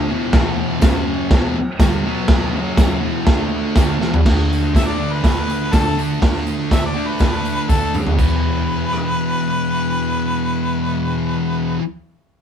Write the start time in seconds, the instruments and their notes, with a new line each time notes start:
0.09 distorted electric guitar E2 B2 E3
0.33 distorted electric guitar E2 B2 E3, kick, snare, crash
0.81 distorted electric guitar F#2 C#3 F#3, kick, snare, tambourine, crash
1.30 distorted electric guitar E2 B2 E3, kick, snare, crash
1.55 muted distorted electric guitar stroke
1.79 distorted electric guitar G2 D3 G3, kick, snare, tambourine, crash
2.05 distorted electric guitar B2 F#3 B3
2.28 kick, snare, crash
2.54 distorted electric guitar F#2 C#3 F#3
2.77 kick, snare, tambourine, crash
3.02 distorted electric guitar E2 B2 E3
3.27 distorted electric guitar D3 A3 D4, kick, snare, crash
3.75 distorted electric guitar D3 A3 D4, kick, snare, tambourine, crash
4.00 distorted electric guitar E2 B2 E3, snare
4.14 floor tom
4.25 distorted electric guitar D3 A3 D4, kick, snare, crash
4.29 tambourine
4.53 tambourine
4.75 distorted electric guitar D3 A3 D4, harmonica E5, kick, snare, open hi-hat, tambourine
4.86 harmonica D5
4.98 distorted electric guitar D3 A3 D4
5.13 harmonica B4
5.22 distorted electric guitar D3 A3 D4, kick, snare, open hi-hat, tambourine
5.49 tambourine
5.72 distorted electric guitar D3 A3 D4, harmonica A4, kick, snare, open hi-hat, tambourine
5.98 distorted electric guitar D3 A3 D4, tambourine
6.20 distorted electric guitar D3 A3 D4, kick, snare, open hi-hat, tambourine
6.47 tambourine
6.71 distorted electric guitar D3 A3 D4, harmonica E5, kick, snare, open hi-hat, tambourine
6.85 harmonica D5
6.95 distorted electric guitar D3 A3 D4
7.08 harmonica B4
7.19 distorted electric guitar D3 A3, kick, snare, open hi-hat, tambourine
7.23 distorted electric guitar D4
7.45 tambourine
7.69 distorted electric guitar D3 A3 D4, harmonica A4, kick, snare, tambourine
7.94 distorted electric guitar D3 A3 D4, mid tom, tambourine
8.07 floor tom
8.16 distorted electric guitar E2 B2, harmonica B4, kick, crash, tambourine
8.20 distorted electric guitar E3
8.93 cross-stick